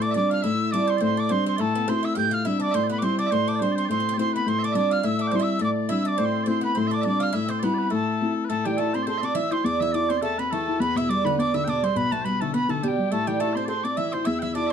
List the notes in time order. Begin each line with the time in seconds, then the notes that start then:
Already playing: A2
0.02 D4 D5 D6
0.11 D4 D5 E5
0.16 G3 C4 D4 D6
0.30 F4 F5 F6
0.42 A2 E4 E5 E6
0.71 G3 C4 D4 E4 D5 D6
0.87 C4 C5 C6
0.97 C4 D4 D5
1.01 A2 C5 C6
1.17 D4 D5 D6
1.29 G3 C4 D4 C5 C6
1.46 C4 C6
1.56 A2 A3 A4 D5
1.61 A5
1.75 B3
1.88 A3 C4 E4 C5 C6
2.03 E4 E5 E6
2.14 A2 G4 F5 G5 G6
2.31 F4 F5 F6
2.45 G3 C4 D4 E4 E5 E6
2.60 D4 D5 D6
2.71 A2 C4 C5 E5 C6
2.83 C5 D5
2.90 B3 B4 B5
2.98 G3 D6
3.02 C4 E4 C5 C6
3.18 D4 D5 D6
3.26 E5
3.31 A2 C4 C5 C6
3.48 D4 D6
3.56 C5 D5
3.60 G3 C4 D4 C6
3.72 C5 D5
3.77 C4 C6
3.85 C5 D5
3.89 A2 C4 C6
4.00 C4
4.09 C4
4.14 A3 C4 C5 D5
4.18 C4 E4 C6
4.33 B3 B4 B5
4.46 A2 C4 C5 C6
4.59 D5 E5
4.64 D4 D6
4.72 G3 C4 D4 D5 E5
4.77 D6
4.91 F4 F5 F6
5.03 A2 E4 E5 E6
5.19 D4 D6
5.27 C4 G5
5.32 G3 C4 E4 C5 C6
5.39 E4 E5 E6
5.59 A2 D4 D5 D6
5.89 G3 C4 D4 E4 E5 E6
6.05 D4 D5 D6
6.18 A2 C4 C5 D6
6.25 C6
6.44 A3 C4 C5 D5
6.48 E4 C6
6.61 B3 B4 B5
6.75 A2 C4 C5 C6
6.87 D4 D5 E5
6.93 D6
7.01 G3 D4 D5 E5
7.06 C4 D4 D6
7.20 F4 F5 F6
7.33 A2 E4 E5 E6
7.48 C4 C5 C6
7.59 G3 B3 C4 E4 D5
7.64 B4 B5
7.74 D5
7.78 B4
7.90 A2 A3 A4 A5
8.21 A3 C4 E4
8.45 B4
8.49 A2 A3 A4 A5
8.65 E3 G3 G4 G5
8.77 A3 E4 A4 A5
8.94 C4 C5 C6
9.03 C5 D5
9.07 C4 A4 C6
9.18 D5 E5
9.22 C4 D4 D6
9.35 E3 E4 E5 E6
9.51 C4 E4 C5 C6
9.64 E2 D4 D5 D6
9.80 E3 E4 E5 E6
9.92 D4 E4 D5 D6
10.09 C4 C5 C6
10.17 D5
10.22 A3 A4 A5
10.38 B3 C4 B4 B5
10.51 E3 A3 A4 A5
10.68 E4
10.80 E2 B3 B4 B5
10.95 B2 E4 E5 E6
11.09 G3 D4 D5 D6
11.24 D3 B3 B4 B5
11.38 B3 D4 D5 D6
11.54 D3 E4 E5 E6
11.64 B2 D4 G5
11.69 D5 D6
11.82 G3 C4 C5 C6
11.95 B1 B3 B4 B5
12.11 B2 A3 A5
12.22 G3 B3 B4 C5 B5
12.40 D3 A3 A4 A5
12.53 B3 B4 B5
12.68 D3 A3 A4 A5
12.83 B2 G3 G4 A5
12.87 G5
12.98 G3
13.11 A2 A3 A4 A5
13.27 E3 G3 G4 G5
13.39 A3 E4 A4 A5
13.53 C4 C5 D5 C6
13.65 C4 A4 C5 D5 C6
13.83 C4 D4 D5 D6
13.96 E3 E4 E5 E6
14.12 C4 E4 C5 C6
14.25 E2 E4 E5 E6
14.39 E3 E4 E5 G5 E6
14.55 D4 E4 D5 D6
14.67 E5